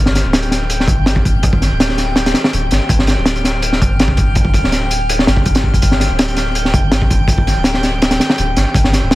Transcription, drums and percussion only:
0.06 snare medium
0.15 snare soft
0.15 closed hi-hat medium
0.33 snare loud
0.33 closed hi-hat medium
0.42 closed hi-hat soft
0.51 snare soft
0.51 closed hi-hat medium
0.70 closed hi-hat medium
0.80 snare soft
0.88 kick medium
0.88 closed hi-hat medium
1.06 snare loud
1.06 closed hi-hat medium
1.16 kick medium
1.25 kick medium
1.25 closed hi-hat medium
1.43 kick loud
1.43 closed hi-hat medium
1.53 kick loud
1.62 snare soft
1.62 closed hi-hat medium
1.80 snare loud
1.80 closed hi-hat medium
1.89 snare soft
1.98 snare soft
1.98 closed hi-hat medium
2.16 snare loud
2.16 closed hi-hat medium
2.26 snare medium
2.26 closed hi-hat medium
2.34 snare loud
2.34 closed hi-hat medium
2.44 snare loud
2.53 closed hi-hat medium
2.71 snare medium
2.71 closed hi-hat medium
2.89 kick loud
2.89 closed hi-hat medium
2.99 snare medium
3.07 snare soft
3.07 closed hi-hat medium
3.25 snare loud
3.25 closed hi-hat medium
3.36 closed hi-hat soft
3.44 snare soft
3.44 closed hi-hat medium
3.62 closed hi-hat medium
3.72 snare soft
3.82 kick medium
3.82 closed hi-hat medium
3.99 snare loud
3.99 closed hi-hat medium
4.08 kick medium
4.17 kick medium
4.17 closed hi-hat medium
4.35 kick loud
4.35 closed hi-hat medium
4.45 kick medium
4.54 kick medium
4.54 closed hi-hat medium
4.64 snare soft
4.72 snare soft
4.72 closed hi-hat medium
4.91 closed hi-hat medium
5.09 closed hi-hat medium
5.19 snare medium
5.27 snare medium
5.27 closed hi-hat medium
5.37 kick medium
5.45 kick medium
5.45 closed hi-hat medium
5.55 snare loud
5.55 closed hi-hat medium
5.64 kick medium
5.74 kick medium
5.74 closed hi-hat medium
5.82 kick loud
5.82 closed hi-hat loud
5.91 snare medium
6.00 snare soft
6.00 closed hi-hat medium
6.19 snare loud
6.19 closed hi-hat medium
6.28 closed hi-hat soft
6.37 snare soft
6.37 closed hi-hat medium
6.55 closed hi-hat medium
6.65 snare soft
6.74 kick loud
6.74 closed hi-hat medium
6.91 snare loud
6.91 closed hi-hat loud
7.02 kick medium
7.10 kick medium
7.10 closed hi-hat medium
7.28 kick loud
7.28 closed hi-hat medium
7.38 kick medium
7.47 snare soft
7.47 closed hi-hat medium
7.64 snare loud
7.64 closed hi-hat medium
7.74 snare medium
7.83 snare medium
7.83 closed hi-hat medium
8.02 snare loud
8.02 closed hi-hat medium
8.11 snare loud
8.11 closed hi-hat medium
8.20 snare loud
8.20 closed hi-hat medium
8.30 snare loud
8.38 closed hi-hat medium
8.56 snare medium
8.56 closed hi-hat medium
8.74 kick loud
8.74 closed hi-hat medium
8.84 snare medium
8.93 snare soft
8.93 closed hi-hat medium
9.11 snare loud
9.11 closed hi-hat medium

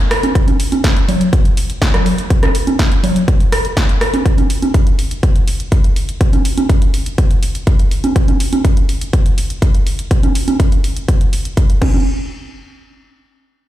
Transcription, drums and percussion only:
0.11 cross-stick medium
0.11 open hi-hat medium
0.23 closed hi-hat soft
0.23 high conga medium
0.35 kick loud
0.35 closed hi-hat medium
0.48 closed hi-hat soft
0.48 high conga medium
0.60 open hi-hat loud
0.72 closed hi-hat soft
0.72 high conga medium
0.84 kick loud
0.84 snare loud
0.84 closed hi-hat medium
0.97 closed hi-hat soft
1.09 open hi-hat loud
1.09 low conga medium
1.21 closed hi-hat soft
1.33 kick loud
1.33 closed hi-hat medium
1.45 closed hi-hat soft
1.57 open hi-hat loud
1.70 closed hi-hat soft
1.82 kick loud
1.82 snare loud
1.82 closed hi-hat medium
1.94 cross-stick medium
1.94 closed hi-hat soft
1.94 low conga medium
2.06 open hi-hat medium
2.18 closed hi-hat soft
2.30 kick loud
2.30 closed hi-hat medium
2.43 cross-stick medium
2.43 closed hi-hat soft
2.43 high conga medium
2.55 open hi-hat loud
2.67 closed hi-hat soft
2.67 high conga medium
2.79 kick loud
2.79 snare loud
2.79 closed hi-hat medium
2.92 closed hi-hat soft
3.04 open hi-hat loud
3.04 low conga medium
3.16 closed hi-hat soft
3.28 kick loud
3.28 closed hi-hat medium
3.40 closed hi-hat soft
3.52 cross-stick medium
3.52 open hi-hat loud
3.65 closed hi-hat soft
3.77 kick loud
3.77 snare loud
3.77 closed hi-hat medium
3.89 closed hi-hat soft
4.01 cross-stick medium
4.01 open hi-hat medium
4.14 closed hi-hat soft
4.14 high conga medium
4.26 kick loud
4.26 closed hi-hat medium
4.38 closed hi-hat soft
4.38 high conga medium
4.50 open hi-hat loud
4.62 closed hi-hat soft
4.62 high conga medium
4.74 kick loud
4.74 closed hi-hat medium
4.87 closed hi-hat soft
4.99 open hi-hat medium
5.11 closed hi-hat soft
5.23 kick loud
5.23 closed hi-hat medium
5.36 closed hi-hat soft
5.48 open hi-hat loud
5.60 closed hi-hat soft
5.72 kick loud
5.72 closed hi-hat medium
5.84 closed hi-hat soft
5.96 open hi-hat medium
6.09 closed hi-hat soft
6.21 kick loud
6.21 closed hi-hat medium
6.33 closed hi-hat soft
6.33 high conga medium
6.45 open hi-hat loud
6.58 closed hi-hat soft
6.58 high conga medium
6.69 kick loud
6.69 closed hi-hat medium
6.82 closed hi-hat soft
6.94 open hi-hat medium
7.06 closed hi-hat soft
7.18 kick loud
7.18 closed hi-hat medium
7.31 closed hi-hat soft
7.43 open hi-hat loud
7.55 closed hi-hat soft
7.67 kick loud
7.67 closed hi-hat medium
7.79 closed hi-hat soft
7.91 open hi-hat medium
8.04 closed hi-hat soft
8.04 high conga medium
8.16 kick loud
8.16 closed hi-hat medium
8.28 closed hi-hat soft
8.28 high conga medium
8.40 open hi-hat loud
8.53 closed hi-hat soft
8.53 high conga medium
8.65 kick loud
8.65 closed hi-hat medium
8.77 closed hi-hat soft
8.89 open hi-hat medium
9.01 closed hi-hat soft
9.13 kick loud
9.13 closed hi-hat medium
9.26 closed hi-hat soft
9.38 open hi-hat loud
9.50 closed hi-hat soft
9.62 kick loud
9.62 closed hi-hat medium
9.75 closed hi-hat soft
9.87 open hi-hat medium
9.99 closed hi-hat soft
10.11 kick loud
10.11 closed hi-hat medium
10.23 closed hi-hat soft
10.23 high conga medium
10.35 open hi-hat loud
10.48 closed hi-hat soft
10.48 high conga medium
10.60 kick loud
10.60 closed hi-hat medium
10.72 closed hi-hat soft
10.84 open hi-hat medium
10.97 closed hi-hat soft
11.08 kick loud
11.08 closed hi-hat medium
11.21 closed hi-hat soft
11.33 open hi-hat medium
11.45 closed hi-hat soft
11.57 kick loud
11.57 closed hi-hat medium
11.70 closed hi-hat soft
11.82 kick loud
11.82 crash medium
11.82 high conga medium
11.94 high conga medium

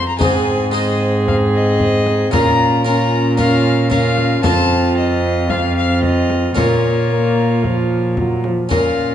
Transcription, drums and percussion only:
0.21 frame drum medium
1.28 frame drum medium
1.80 frame drum soft
2.06 frame drum soft
2.33 frame drum medium
3.38 frame drum soft
3.91 frame drum medium
4.17 frame drum soft
4.44 frame drum medium
5.49 frame drum soft
6.03 frame drum soft
6.30 frame drum soft
6.57 frame drum medium
7.64 frame drum soft
8.17 frame drum medium
8.44 frame drum soft
8.71 frame drum medium

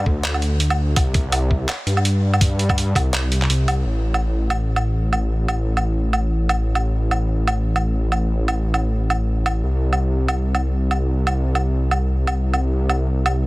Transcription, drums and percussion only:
0.06 kick medium
0.24 clap loud
0.24 closed hi-hat medium
0.34 low woodblock medium
0.42 closed hi-hat soft
0.60 closed hi-hat medium
0.70 low woodblock medium
0.96 kick loud
0.96 closed hi-hat medium
0.96 low woodblock medium
1.14 kick loud
1.14 closed hi-hat soft
1.32 closed hi-hat medium
1.32 low woodblock medium
1.51 kick medium
1.69 clap loud
1.69 closed hi-hat medium
1.69 low woodblock medium
1.87 closed hi-hat soft
1.97 low woodblock medium
2.05 closed hi-hat medium
2.34 low woodblock medium
2.41 kick loud
2.41 closed hi-hat medium
2.59 closed hi-hat soft
2.69 kick loud
2.69 low woodblock medium
2.78 closed hi-hat medium
2.95 kick medium
2.95 closed hi-hat soft
2.95 low woodblock medium
3.14 clap loud
3.14 closed hi-hat medium
3.32 closed hi-hat soft
3.42 clap soft
3.50 closed hi-hat medium
3.68 closed hi-hat soft
3.68 low woodblock medium
4.14 low woodblock medium
4.50 low woodblock medium
4.76 low woodblock medium
5.13 low woodblock medium
5.48 low woodblock medium
5.77 low woodblock soft
6.13 low woodblock soft
6.49 low woodblock medium
6.75 low woodblock soft
7.11 low woodblock medium
7.47 low woodblock medium
7.76 low woodblock soft
8.12 low woodblock soft
8.48 low woodblock medium
8.74 low woodblock soft
9.10 low woodblock soft
9.46 low woodblock medium
9.93 low woodblock soft
10.28 low woodblock medium
10.55 low woodblock medium
10.91 low woodblock soft
11.27 low woodblock medium
11.55 low woodblock soft
11.91 low woodblock soft
12.27 low woodblock medium
12.54 low woodblock medium
12.89 low woodblock medium
13.26 low woodblock medium

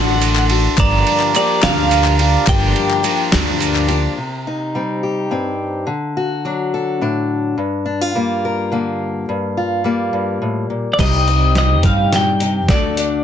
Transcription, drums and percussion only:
0.22 clap soft
0.22 ride medium
0.22 shaker loud
0.36 clap medium
0.36 shaker soft
0.50 ride medium
0.78 kick loud
0.78 clap medium
0.78 ride medium
0.78 shaker loud
1.07 ride medium
1.20 clap medium
1.35 clap soft
1.35 ride medium
1.35 shaker loud
1.62 snare loud
1.62 clap loud
1.62 ride medium
1.90 clap soft
1.90 ride medium
1.90 shaker medium
2.04 clap medium
2.04 shaker soft
2.19 ride medium
2.19 shaker soft
2.47 kick loud
2.47 clap medium
2.47 ride loud
2.47 shaker medium
2.61 clap soft
2.76 ride medium
2.90 clap medium
3.04 ride medium
3.04 shaker medium
3.32 snare loud
3.32 clap medium
3.32 ride medium
3.60 ride medium
3.60 shaker medium
3.75 clap medium
3.89 ride medium
3.89 shaker soft
10.99 kick loud
10.99 snare soft
10.99 closed hi-hat medium
10.99 crash medium
11.28 closed hi-hat soft
11.55 snare soft
11.55 closed hi-hat medium
11.83 kick medium
11.83 closed hi-hat medium
12.13 snare soft
12.13 closed hi-hat medium
12.40 closed hi-hat medium
12.69 kick loud
12.69 snare medium
12.69 closed hi-hat medium
12.97 closed hi-hat medium

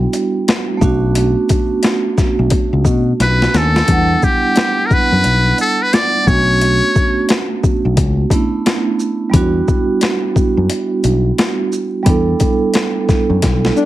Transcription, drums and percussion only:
0.13 closed hi-hat medium
0.13 shaker soft
0.48 snare loud
0.48 closed hi-hat medium
0.81 kick loud
0.81 shaker medium
1.15 closed hi-hat loud
1.49 kick loud
1.49 closed hi-hat medium
1.49 shaker soft
1.83 snare loud
1.83 closed hi-hat medium
2.18 kick medium
2.18 snare soft
2.18 shaker soft
2.50 kick loud
2.50 closed hi-hat medium
2.85 kick medium
2.85 shaker medium
3.20 snare medium
3.20 closed hi-hat medium
3.42 snare medium
3.54 snare medium
3.54 shaker medium
3.76 snare medium
3.88 kick loud
3.88 closed hi-hat medium
4.22 kick medium
4.22 shaker soft
4.56 snare loud
4.56 closed hi-hat medium
4.91 kick medium
4.91 shaker soft
5.24 closed hi-hat medium
5.58 closed hi-hat medium
5.58 shaker medium
5.93 snare loud
5.93 closed hi-hat medium
6.27 kick loud
6.27 shaker medium
6.61 closed hi-hat medium
6.95 kick medium
6.95 shaker medium
7.29 snare loud
7.29 closed hi-hat medium
7.64 kick medium
7.64 shaker soft
7.97 kick loud
7.97 closed hi-hat medium
8.30 kick loud
8.30 closed hi-hat medium
8.30 shaker medium
8.66 snare loud
8.66 closed hi-hat medium
9.00 shaker soft
9.34 kick loud
9.34 closed hi-hat loud
9.68 kick loud
9.68 shaker soft
10.01 snare loud
10.01 closed hi-hat medium
10.36 kick medium
10.36 shaker soft
10.70 closed hi-hat medium
11.04 closed hi-hat medium
11.04 shaker soft
11.38 snare loud
11.38 closed hi-hat medium
11.72 shaker medium
12.06 kick loud
12.06 closed hi-hat medium
12.40 kick medium
12.40 closed hi-hat soft
12.40 shaker soft
12.74 snare loud
12.74 closed hi-hat medium
13.09 kick medium
13.09 snare soft
13.09 shaker soft
13.42 kick medium
13.42 snare medium
13.42 closed hi-hat medium
13.65 snare medium
13.77 shaker medium

